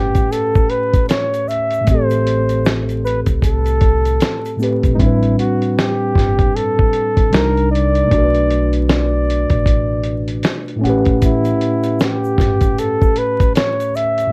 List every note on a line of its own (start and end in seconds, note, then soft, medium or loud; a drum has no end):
0.00 0.26 G1 medium
0.00 1.41 A2 medium
0.00 1.42 A3 medium
0.00 1.44 C#4 medium
0.00 0.33 G4 medium
0.00 1.46 G4 medium
0.00 1.48 B4 medium
0.00 1.45 F#5 medium
0.15 kick medium
0.15 closed hi-hat medium
0.15 shaker soft
0.32 0.71 A4 loud
0.32 closed hi-hat medium
0.32 shaker medium
0.55 kick loud
0.55 shaker soft
0.70 1.09 B4 medium
0.70 closed hi-hat medium
0.93 kick loud
0.93 closed hi-hat medium
0.93 shaker soft
1.09 1.50 C#5 medium
1.09 snare loud
1.09 closed hi-hat medium
1.09 shaker medium
1.34 closed hi-hat soft
1.34 shaker soft
1.48 1.90 E5 loud
1.48 closed hi-hat medium
1.48 shaker medium
1.71 closed hi-hat soft
1.71 shaker soft
1.81 4.53 A2 medium
1.81 4.55 A3 medium
1.87 3.24 A1 medium
1.87 4.56 C4 medium
1.87 2.80 C5 medium
1.87 kick medium
1.87 closed hi-hat medium
1.87 shaker medium
1.91 4.58 G4 medium
1.91 4.60 A4 medium
2.10 closed hi-hat soft
2.10 shaker medium
2.27 closed hi-hat medium
2.49 closed hi-hat soft
2.49 shaker soft
2.65 snare loud
2.65 closed hi-hat medium
2.65 shaker medium
2.89 closed hi-hat soft
2.89 shaker soft
3.05 3.21 B4 medium
3.05 closed hi-hat medium
3.05 shaker soft
3.26 4.17 C2 medium
3.26 kick medium
3.26 closed hi-hat medium
3.26 shaker soft
3.42 4.56 A4 medium
3.42 kick medium
3.42 closed hi-hat medium
3.42 shaker medium
3.66 closed hi-hat soft
3.66 shaker medium
3.81 kick loud
3.81 closed hi-hat medium
4.05 closed hi-hat soft
4.05 shaker soft
4.20 snare loud
4.20 closed hi-hat medium
4.20 shaker medium
4.45 closed hi-hat soft
4.45 shaker medium
4.57 4.92 A2 medium
4.57 4.98 A3 medium
4.57 4.98 C4 medium
4.57 shaker medium
4.62 5.00 G4 medium
4.62 5.01 B4 medium
4.62 closed hi-hat medium
4.83 4.97 E1 medium
4.83 kick medium
4.83 closed hi-hat medium
4.83 shaker soft
4.93 7.26 A2 medium
4.93 7.28 G3 medium
4.93 5.01 D#4 medium
4.99 5.33 A1 medium
4.99 7.29 C4 medium
4.99 7.31 D4 medium
4.99 5.38 E4 medium
4.99 kick medium
4.99 closed hi-hat medium
5.06 7.32 B4 medium
5.23 closed hi-hat soft
5.39 5.80 F#4 medium
5.39 closed hi-hat medium
5.62 closed hi-hat soft
5.78 6.57 G4 medium
5.78 snare loud
5.78 closed hi-hat medium
6.15 6.49 G1 medium
6.15 kick medium
6.15 snare soft
6.15 closed hi-hat medium
6.39 kick medium
6.39 closed hi-hat soft
6.56 7.36 A4 loud
6.56 closed hi-hat medium
6.79 kick loud
6.93 closed hi-hat medium
7.17 kick loud
7.17 closed hi-hat soft
7.30 8.00 C2 medium
7.30 8.09 C3 medium
7.30 8.10 G3 medium
7.30 8.10 D4 medium
7.30 7.71 A#4 loud
7.30 closed hi-hat medium
7.34 8.12 D#4 medium
7.34 8.13 A#4 medium
7.34 snare loud
7.57 closed hi-hat soft
7.72 8.85 D5 loud
7.72 closed hi-hat medium
7.95 closed hi-hat medium
8.04 10.76 B2 medium
8.04 10.78 A3 medium
8.11 9.47 B1 loud
8.11 10.80 D4 medium
8.11 10.81 F#4 medium
8.11 kick loud
8.11 closed hi-hat medium
8.18 8.22 A#4 medium
8.24 10.86 B4 medium
8.35 closed hi-hat soft
8.51 closed hi-hat medium
8.73 closed hi-hat soft
8.89 10.42 D5 medium
8.89 snare loud
8.89 closed hi-hat medium
9.30 closed hi-hat medium
9.50 10.40 A1 medium
9.50 kick medium
9.50 closed hi-hat medium
9.66 kick medium
9.66 closed hi-hat medium
10.03 closed hi-hat medium
10.28 closed hi-hat soft
10.43 snare loud
10.43 closed hi-hat medium
10.68 closed hi-hat soft
10.76 13.87 A2 medium
10.76 13.89 A3 medium
10.81 11.51 A1 medium
10.81 13.90 C#4 medium
10.81 13.92 F#5 medium
10.81 closed hi-hat medium
10.87 13.93 G4 medium
10.87 13.94 B4 medium
11.05 kick medium
11.05 closed hi-hat soft
11.22 11.97 E4 medium
11.22 kick medium
11.22 closed hi-hat medium
11.22 shaker medium
11.45 closed hi-hat soft
11.45 shaker medium
11.61 closed hi-hat medium
11.83 closed hi-hat soft
11.83 shaker soft
12.00 12.81 G4 medium
12.00 snare loud
12.00 closed hi-hat medium
12.00 shaker medium
12.24 shaker medium
12.38 12.72 G1 loud
12.38 kick medium
12.38 snare soft
12.38 closed hi-hat medium
12.38 shaker soft
12.61 kick medium
12.61 closed hi-hat medium
12.61 shaker soft
12.78 13.19 A4 loud
12.78 closed hi-hat medium
12.78 shaker medium
13.02 kick loud
13.02 shaker medium
13.16 13.55 B4 medium
13.16 closed hi-hat medium
13.40 kick medium
13.40 closed hi-hat medium
13.40 shaker soft
13.55 13.97 C#5 loud
13.55 snare loud
13.55 closed hi-hat medium
13.55 shaker medium
13.80 closed hi-hat soft
13.80 shaker medium
13.95 14.32 E5 loud
13.95 closed hi-hat medium
13.95 shaker soft
14.18 closed hi-hat soft
14.18 shaker soft
14.27 14.32 A2 medium